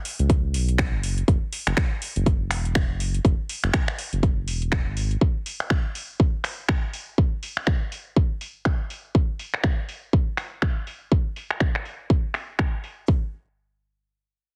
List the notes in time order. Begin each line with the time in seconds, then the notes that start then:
0.05 open hi-hat
0.19 C#2, closed hi-hat
0.30 kick, closed hi-hat
0.54 B1, open hi-hat
0.69 closed hi-hat
0.78 finger snap, kick, closed hi-hat
0.93 F#1
1.03 open hi-hat
1.18 closed hi-hat
1.28 F#1, kick, closed hi-hat
1.53 open hi-hat
1.67 F#1, finger snap
1.77 finger snap, kick, closed hi-hat
2.02 open hi-hat
2.16 F#1, closed hi-hat
2.26 kick, closed hi-hat
2.51 E1, finger snap, open hi-hat
2.65 closed hi-hat
2.75 finger snap, kick, closed hi-hat
2.90 F#1
3.00 open hi-hat
3.14 closed hi-hat
3.25 F#1, kick, closed hi-hat
3.49 open hi-hat
3.64 F#1, finger snap
3.73 finger snap, kick, closed hi-hat
3.88 finger snap
3.98 open hi-hat
4.13 F#1, closed hi-hat
4.23 kick, closed hi-hat
4.48 E1, open hi-hat
4.62 closed hi-hat
4.72 finger snap, kick, closed hi-hat
4.87 G#1
4.97 open hi-hat
5.11 closed hi-hat
5.21 kick
5.46 open hi-hat
5.60 finger snap
5.70 finger snap, kick
5.95 open hi-hat
6.20 kick
6.44 finger snap, open hi-hat
6.69 finger snap, kick
6.93 open hi-hat
7.18 kick
7.43 open hi-hat
7.57 finger snap
7.67 finger snap, kick
7.92 open hi-hat
8.16 kick
8.41 open hi-hat
8.65 finger snap, kick
8.90 open hi-hat
9.15 kick
9.39 open hi-hat
9.54 finger snap
9.64 finger snap, kick
9.89 open hi-hat
10.13 kick
10.37 finger snap, open hi-hat
10.62 finger snap, kick
10.87 open hi-hat
11.12 kick
11.36 open hi-hat
11.50 finger snap
11.60 finger snap, kick
11.75 finger snap
11.85 open hi-hat
12.10 kick
12.34 finger snap, open hi-hat
12.59 finger snap, kick
12.84 open hi-hat
13.08 kick